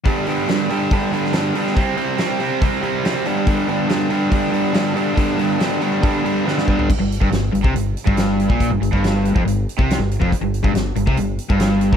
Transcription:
0.04 overdriven electric guitar G2 D3 G3 B3 D4 G4, kick, open hi-hat
0.26 overdriven electric guitar G2 D3 G3 B3 D4 G4, open hi-hat
0.47 overdriven electric guitar G2 D3 G3 B3 D4 G4, snare, open hi-hat
0.69 overdriven electric guitar G2 D3 G3 B3 D4 G4, open hi-hat
0.90 overdriven electric guitar G2 D3 G3 B3 D4 G4, kick, open hi-hat
1.11 overdriven electric guitar G2 D3 G3 B3 D4 G4, open hi-hat
1.25 snare
1.33 overdriven electric guitar G2 D3 G3 B3 D4 G4, snare, open hi-hat
1.55 overdriven electric guitar G2 D3 G3 B3 D4 G4, open hi-hat
1.67 snare
1.76 overdriven electric guitar C3 G3 C4 E4 G4, kick, open hi-hat
1.96 overdriven electric guitar C3 G3 C4 E4 G4, open hi-hat
2.18 overdriven electric guitar C3 G3 C4 E4 G4, snare, open hi-hat
2.39 overdriven electric guitar C3 G3 C4 E4 G4, open hi-hat
2.60 overdriven electric guitar C3 G3 C4 E4 G4, kick, open hi-hat
2.81 overdriven electric guitar C3 G3 C4 E4 G4, open hi-hat
3.04 overdriven electric guitar C3 G3 C4 E4 G4, snare, open hi-hat
3.24 overdriven electric guitar G2 D3 G3 B3 D4, open hi-hat
3.46 overdriven electric guitar G2 D3 G3 B3 D4, kick, open hi-hat
3.67 overdriven electric guitar G2 D3 G3 B3 D4, open hi-hat
3.88 overdriven electric guitar G2 D3 G3 B3 D4, snare, open hi-hat
4.09 overdriven electric guitar G2 D3 G3 B3 D4, open hi-hat
4.30 overdriven electric guitar G2 D3 G3 B3 D4, kick, open hi-hat
4.52 overdriven electric guitar G2 D3 G3 B3 D4, open hi-hat
4.73 overdriven electric guitar G2 D3 G3 B3 D4, snare, open hi-hat
4.94 overdriven electric guitar G2 D3 G3 B3 D4, open hi-hat
5.16 overdriven electric guitar G2 D3 G3 B3 D4, kick, open hi-hat
5.38 overdriven electric guitar G2 D3 G3 B3 D4, open hi-hat
5.60 overdriven electric guitar G2 D3 G3 B3 D4, snare, open hi-hat
5.81 overdriven electric guitar G2 D3 G3 B3 D4, open hi-hat
6.02 overdriven electric guitar G2 D3 G3 B3 D4, kick, open hi-hat
6.23 overdriven electric guitar G2 D3 G3 B3 D4, open hi-hat
6.44 overdriven electric guitar G2 D3 G3 B3 D4, snare
6.58 snare
6.65 overdriven electric guitar G2 D3 G3 B3 D4, kick
6.79 floor tom
6.90 kick, crash
6.99 fingered electric bass G1, overdriven electric guitar G2
7.12 closed hi-hat
7.21 fingered electric bass G1, overdriven electric guitar G2, kick
7.31 fingered electric bass G1, overdriven electric guitar G2, snare, closed hi-hat
7.52 fingered electric bass G1, overdriven electric guitar G2, closed hi-hat
7.63 fingered electric bass C2, overdriven electric guitar C3, kick
7.74 fingered electric bass G1, overdriven electric guitar G2, closed hi-hat
7.97 closed hi-hat
8.06 fingered electric bass G1, overdriven electric guitar G2, kick
8.17 snare, closed hi-hat
8.40 closed hi-hat
8.49 fingered electric bass A#1, overdriven electric guitar A#2, kick
8.60 kick, closed hi-hat
8.71 fingered electric bass G1, overdriven electric guitar G2
8.82 fingered electric bass G1, overdriven electric guitar G2, closed hi-hat
8.92 fingered electric bass G1, overdriven electric guitar G2, kick
9.04 snare, closed hi-hat
9.25 closed hi-hat
9.36 fingered electric bass F1, overdriven electric guitar F2, kick
9.45 fingered electric bass G1, overdriven electric guitar G2, closed hi-hat
9.69 closed hi-hat
9.78 fingered electric bass C2, overdriven electric guitar C3, kick
9.90 snare, closed hi-hat
9.98 fingered electric bass G1, overdriven electric guitar G2
10.11 closed hi-hat
10.20 fingered electric bass F1, overdriven electric guitar F2, kick
10.32 kick, closed hi-hat
10.41 fingered electric bass G1, overdriven electric guitar G2
10.54 closed hi-hat
10.63 fingered electric bass G1, overdriven electric guitar G2, kick
10.73 fingered electric bass G1, overdriven electric guitar G2, snare, closed hi-hat
10.96 fingered electric bass G1, overdriven electric guitar G2, closed hi-hat
11.06 fingered electric bass C2, overdriven electric guitar C3, kick
11.17 fingered electric bass G1, overdriven electric guitar G2, closed hi-hat
11.38 closed hi-hat
11.49 fingered electric bass G1, overdriven electric guitar G2, kick
11.60 snare, closed hi-hat
11.81 closed hi-hat
11.92 fingered electric bass A#1, overdriven electric guitar A#2, kick

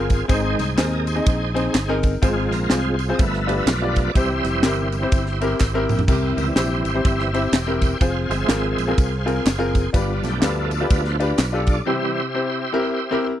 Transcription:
Already playing: fingered electric bass G1, grand piano C4 F4 G#4 A#4, tonewheel organ C4 F4 G#4
0.10 kick, ride, tambourine
0.28 fingered electric bass G#1, grand piano G#2 C4 D#4 G#4 C5, tonewheel organ D#3 G#3 C4 D#4 G#4 C5, kick, ride, tambourine
0.59 fingered electric bass C2, snare, ride, tambourine
0.77 fingered electric bass D#2, grand piano C4 D#4 G#4 C5, tonewheel organ A#4, snare, clap, ride, tambourine
1.07 tonewheel organ D#4 G#4 C5, ride, tambourine
1.15 grand piano C4 D#4 G#4 D#5
1.26 fingered electric bass A#1, kick, ride, tambourine
1.54 grand piano C4 D#4 G#4 C5, ride, tambourine
1.74 fingered electric bass G1, snare, clap, ride, tambourine
1.88 grand piano C4 D#4 G#4 A#4
2.03 kick, ride, tambourine
2.22 fingered electric bass G#1, grand piano G#2 C4 F4 G#4 C5, tonewheel organ F3 G#3 C4 F4 G#4, kick, ride, tambourine
2.51 fingered electric bass A#1, tonewheel organ A#4, snare, ride, tambourine
2.70 fingered electric bass C2, grand piano C4 F4 G#4 C5, tonewheel organ F4 G#4 C5, snare, clap, ride, tambourine
2.99 ride, tambourine
3.09 grand piano C4 F4 G#4 C5
3.14 tonewheel organ D#5
3.18 fingered electric bass G1, grand piano G2, tonewheel organ F3 A3 B3 B4 E5, kick, ride, tambourine
3.33 snare
3.47 grand piano D4 F4 G4 B4, ride, tambourine
3.66 fingered electric bass B1, tonewheel organ F4 B4 D5, snare, clap, ride, tambourine
3.82 grand piano D4 F4 G4 D5
3.96 kick, ride, tambourine
4.14 fingered electric bass C2, grand piano C3 C4 E4 G4 C5, tonewheel organ E3 G3 C4 G4 C5 E5, kick, ride, tambourine
4.44 fingered electric bass F1, tonewheel organ E4 G4 C5, snare, ride, tambourine
4.63 fingered electric bass G1, grand piano C4 E4 G4 A#4, snare, clap, ride, tambourine
4.92 tonewheel organ E3 G3 C4, ride, tambourine
5.02 grand piano C4 E4 G4 C5
5.12 fingered electric bass G1, tonewheel organ E4 G4 C5, kick, ride, tambourine
5.26 snare
5.41 grand piano C4 E4 G4 A#4, ride, tambourine
5.60 fingered electric bass G#1, kick, snare, clap, tambourine
5.74 grand piano C4 E4 G4 A#4
5.89 fingered electric bass A#1, mid tom, tambourine
5.99 floor tom
6.07 fingered electric bass C2, grand piano C3 C4 E4 G4 A#4, tonewheel organ C4 E4 G4, kick, tambourine, crash
6.37 fingered electric bass C#2, tonewheel organ E3 G3 C4 A#4, ride, tambourine
6.56 fingered electric bass A#1, grand piano C4 E4 G4 C5, tonewheel organ E4 G4 C5, snare, clap, ride, tambourine
6.85 fingered electric bass G#1, ride, tambourine
6.94 grand piano C4 E4 G4 C5
7.04 fingered electric bass G1, tonewheel organ E3 G3 C4 G4 C5 E5, kick, ride, tambourine
7.19 snare
7.34 grand piano C4 E4 G4 C5, ride, tambourine
7.52 fingered electric bass E1, tonewheel organ C5 E5 G5, snare, clap, ride, tambourine
7.67 grand piano C4 E4 G4 A#4
7.82 kick, ride, tambourine
8.00 fingered electric bass F1, grand piano C4 F4 G#4 C5, tonewheel organ G#4 C5 F5, kick, ride, tambourine
8.29 fingered electric bass G1, tonewheel organ F3 G#3 C4 G#4 C5 E5, snare, ride, tambourine
8.48 fingered electric bass G#1, grand piano C4 F4 G#4 A#4, snare, clap, ride, tambourine
8.78 fingered electric bass A#1, ride, tambourine
8.87 grand piano C4 F4 G#4 A#4
8.98 fingered electric bass C2, tonewheel organ G#4 C5 F5, kick, ride, tambourine
9.26 grand piano C4 F4 G#4 A#4, ride, tambourine
9.46 fingered electric bass F#1, snare, clap, ride, tambourine
9.58 grand piano C4 F4 G#4 A#4
9.75 kick, ride, tambourine
9.93 fingered electric bass G1, grand piano G2 D4 F4 G4 B4, tonewheel organ B3 D4 F4, kick, ride, tambourine
10.23 fingered electric bass B1, tonewheel organ F3 A3 B3 G4, snare, ride, tambourine
10.41 fingered electric bass D2, grand piano D4 F4 G4 B4, tonewheel organ D4 F4 A4, snare, clap, ride, tambourine
10.71 ride, tambourine
10.80 grand piano D4 F4 G4 B4
10.90 fingered electric bass D2, tonewheel organ F3 A3 B3 D4 F4 B4, kick, ride, tambourine
11.05 snare
11.10 tonewheel organ C5
11.19 tonewheel organ D4 F4 B4, grand piano D4 F4 G4 B4, ride, tambourine
11.38 fingered electric bass B1, snare, clap, ride, tambourine
11.52 grand piano D4 F4 G4 A4
11.67 tonewheel organ D5, kick, ride, tambourine
11.86 grand piano C3 C4 E4 G4 C5, tonewheel organ E3 G3 C4 G4 C5 E5
12.34 grand piano C4 E4 G4 C5
12.72 grand piano C4 E4 G4 A#4
13.11 grand piano C4 E4 G4 A#4

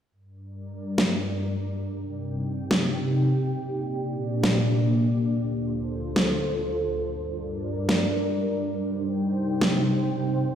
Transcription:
0.12 ambient pad G2 G3 D4 A#4 D5
0.98 snare
1.85 ambient pad C3 C4 D#4 G4 G5
2.71 snare
3.57 ambient pad A#2 A#3 D4 D5
4.43 snare
5.30 ambient pad D2 D3 F4 A4 C5
6.16 snare
7.03 ambient pad G2 G3 D4 A#4 D5
7.89 snare
8.75 ambient pad C3 G3 D#4 C5 G5
9.61 snare
10.48 ambient pad A#2 A#3 D4 G4 D5

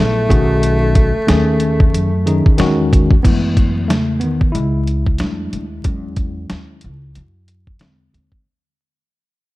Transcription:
Already playing: tine electric piano F#3 B3 E4 G#4, tenor saxophone A3
0.00 upright bass A#1
0.29 upright bass B1, tine electric piano D#3 C#4 F#4 G#4, kick, closed hi-hat
0.63 closed hi-hat
0.95 kick, closed hi-hat
1.16 muted upright bass stroke
1.27 upright bass D#2, tine electric piano D#3 A3 C#4 G#4, snare, closed hi-hat
1.60 closed hi-hat
1.80 kick
1.94 upright bass F#2, closed hi-hat
2.26 tine electric piano D#3 C#4 D#4 G#4, closed hi-hat
2.46 muted upright bass stroke, kick
2.58 upright bass E2, tine electric piano D#3 G#3 C#4 F#4, snare, closed hi-hat
2.93 kick, closed hi-hat
3.11 kick
3.23 upright bass F#2, tine electric piano E3 G#3 A3 B3 E4, kick, closed hi-hat, crash
3.57 kick, closed hi-hat
3.88 upright bass E2, tine electric piano C#3 A3, snare, closed hi-hat
4.20 tine electric piano D#3 B3, closed hi-hat
4.41 kick
4.52 upright bass C#2, tine electric piano G#3 E4, closed hi-hat
4.87 closed hi-hat
5.06 kick
5.18 upright bass F2, tine electric piano G3 A3 D4, snare, closed hi-hat
5.53 upright bass D#2, closed hi-hat
5.84 upright bass E2, tine electric piano F#3 G#3 C#4, kick, closed hi-hat
6.16 kick, closed hi-hat
6.50 upright bass D#2, snare, closed hi-hat
6.81 upright bass C#2, closed hi-hat
7.15 upright bass F#2, closed hi-hat
7.48 closed hi-hat
7.67 kick
7.79 upright bass E2, tine electric piano D3 G#3 C4, snare, closed hi-hat
8.14 upright bass D#2, closed hi-hat
8.32 kick

